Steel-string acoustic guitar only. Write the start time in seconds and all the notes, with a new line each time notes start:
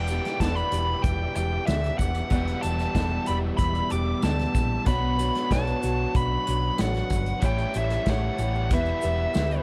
0.09 D4 G4 D5
0.41 B3 D4 G4 D5
0.72 D4 G4 D5
1.37 D4 G4 D5
1.68 B3 D4 G4 D5
2.31 E3 B3 D4 G4 D5
2.64 D4 G4 D5
2.94 B3 D4 G4 D5
3.28 D4 G4 D5
3.92 D4 G4 D5
4.24 B3 D4 G4 D5
4.85 B2 B3 D4 F#4 C#5
5.18 D4 F#4 C#5
5.52 B3 D4 F#4 C#5
5.81 D4 F#4 C#5
6.45 D4 F#4 C#5
6.78 B3 D4 F#4 C#5
7.42 A3 E4 G4 C#5
7.75 E4 G4 C#5
8.07 A3 E4 G4 C#5
8.38 E4 G4 C#5
8.72 E3 B3 E4 G4 B4
9.03 E4 G4 B4
9.35 B3 E4 G4 B4